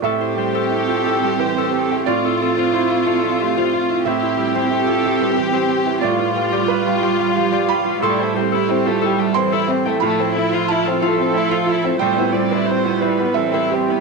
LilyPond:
<<
  \new Staff \with { instrumentName = "Harp" } { \time 3/4 \key a \minor \tempo 4 = 90 <g' a'>16 c''16 c''16 a'8 c''16 a'16 g''16 g''16 a'8 g''16 | f'16 a'16 a'16 f'8 a'16 f'16 e''16 e''16 f'8 e''16 | c'16 e'16 e'16 c'8 e'16 c'16 b'16 b'16 c'8 b'16 | g'16 b'16 b'16 g'8 b'16 g'16 f''16 f''16 g'8 f''16 |
a'16 c''16 c''16 a'8 c''16 a'16 g''16 g''16 a'8 g''16 | f'16 a'16 a'16 f'8 a'16 f'16 e''16 e''16 f'8 e''16 | c'16 e'16 e'16 c'8 e'16 c'16 b'16 b'16 c'8 b'16 | }
  \new Staff \with { instrumentName = "Viola" } { \time 3/4 \key a \minor r4 a'4 c''8 a'8 | f'4 e'8 a'8 g'8 f'8 | e'4 a'4 g'4 | f'2 g'8 f'8 |
e'8 g'4. e'8 c'8 | e'4 f'8 a'4. | c''8 d''8 c''8 b'8 a'8 g'8 | }
  \new Staff \with { instrumentName = "Felt piano" } { \time 3/4 \key a \minor << { e''2. | d''4 c''2 | e''2. | d''4 b'4. b''8 |
c'''2 c'''4 | b''4 a''4. r8 | g''2 e''4 | } \\ { a,16 e'16 g16 c''16 e'16 f'16 e'16 g16 e16 c''16 g'16 e'16 | a,16 e'16 f16 c''16 e'16 f'16 e'16 f16 a16 c''16 f'16 e'16 | a,16 e'16 g16 c''16 e'16 f'16 e'16 g16 e16 c''16 g'16 e'16 | a,16 f'16 g16 d''16 f'16 g'16 f'16 g16 f16 d''16 g'16 f'16 |
a,16 e'16 g16 c''16 e'16 f'16 e'16 g16 e16 c''16 g'16 e'16 | a,16 e'16 f16 c''16 e'16 f'16 e'16 f16 a16 c''16 f'16 e'16 | a,16 e'16 g16 b'16 e'16 f'16 e'16 g16 e16 b'16 g'16 e'16 | } >> }
  \new Staff \with { instrumentName = "Violin section" } { \time 3/4 \key a \minor g'2. | f'2. | g'2. | f'2. |
g16 a16 c'16 e'16 c'16 a16 g16 a16 c'16 e'16 c'16 a16 | a16 c'16 e'16 f'16 e'16 c'16 a16 c'16 e'16 f'16 e'16 c'16 | g16 b16 c'16 e'16 c'16 b16 g16 b16 c'16 e'16 c'16 b16 | }
  \new Staff \with { instrumentName = "Cello" } { \clef bass \time 3/4 \key a \minor c'2.~ | c'2. | c'2. | g2. |
g2. | f2. | g2. | }
>>